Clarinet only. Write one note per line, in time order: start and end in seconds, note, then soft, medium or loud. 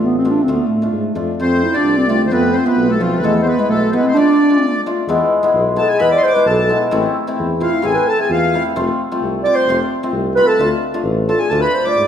0.05 0.18 B3 medium
0.18 0.32 C4 medium
0.31 0.44 D4 medium
0.43 0.57 C4 medium
0.55 0.68 B3 medium
0.67 1.15 A3 medium
1.39 1.65 C4 medium
1.64 1.78 E4 medium
1.77 1.99 D4 medium
1.97 2.10 C4 medium
2.08 2.31 A3 medium
2.32 2.56 B3 medium
2.54 2.67 C4 medium
2.65 2.91 B3 medium
2.89 3.01 A3 medium
2.99 3.23 F3 medium
3.23 3.43 A3 medium
3.44 3.61 B3 medium
3.59 3.68 G#3 medium
3.69 3.96 A3 medium
3.94 4.04 B3 medium
4.03 4.14 C4 medium
4.14 4.80 D4 medium
5.78 5.92 A4 medium
5.91 6.03 G#4 medium
6.01 6.11 B4 medium
6.12 6.25 D5 medium
6.23 6.36 C5 loud
6.34 6.49 B4 medium
6.48 6.82 A4 medium
7.60 7.75 F4 medium
7.73 7.85 E4 medium
7.83 7.97 G#4 medium
7.95 8.09 B4 medium
8.08 8.19 A4 medium
8.20 8.32 G#4 medium
8.30 8.65 F4 medium
9.44 9.57 D5 loud
9.55 9.79 C5 medium
10.35 10.49 B4 loud
10.47 10.70 A4 loud
11.28 11.42 A4 medium
11.40 11.52 G#4 medium
11.51 11.63 A4 medium
11.61 11.76 B4 medium
11.75 11.90 C5 medium
11.89 12.07 D5 medium